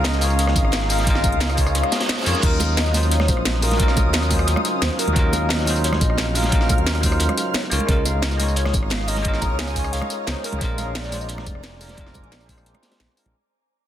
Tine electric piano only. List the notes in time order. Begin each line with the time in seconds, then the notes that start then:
Already playing: G#3 C#4 D#4 F4 A#4 C#5
0.19 G#3 C#4 D#4
0.23 F4 C#5
0.88 G#3 C#4 D#4 F4 A#4
1.04 G#3 C#4 D#4
1.09 F4 A#4
1.55 G#3 C#4 D#4
1.59 F4 C#5
2.25 G#3 C#4 D#4 F4 C#5
2.40 F#3 C#4 D#4
2.45 F4 A#4
2.91 F#3 C#4 D#4
2.96 F4 C5
3.61 F#3 C#4 D#4 F4 A#4
3.76 F#3 C#4 D#4
3.81 F4 A#4
4.28 F#3 C#4 D#4
4.32 F4 C5
4.97 F#3 C#4 D#4 F4 A#4
5.13 F#3 C#4 D#4
5.17 F4 A#4
5.64 F#3 C#4 D#4
5.69 F4 C5
6.34 F#3 C#4 D#4 F4 A#4
6.49 F#3 C#4 D#4
6.53 F4 A#4
7.00 F#3 C#4 D#4
7.05 F4 C5
7.70 G#3 C#4 D#4 F4 C#5
7.86 G#3 C#4 D#4
7.90 F4 A#4
8.37 G#3 C#4 D#4
8.41 F4 C#5
9.07 G#3 C#4 D#4 F4 A#4
9.22 G#3 C#4 D#4
9.27 F4 A#4
9.73 G#3 C#4 D#4
9.78 F4 C#5
10.43 G#3 C#4 D#4 F4 A#4
10.59 G#3 C4 D4
10.63 F4 A#4
11.09 G#3 C4 D4
11.14 F4 C5
11.79 G#3 C4 D4 F4 A#4
11.95 G#3 C4 D4
11.99 F4 A#4
12.46 G#3 C4 D4
12.51 F4 C5
13.16 G#3 C4 D4 F4 A#4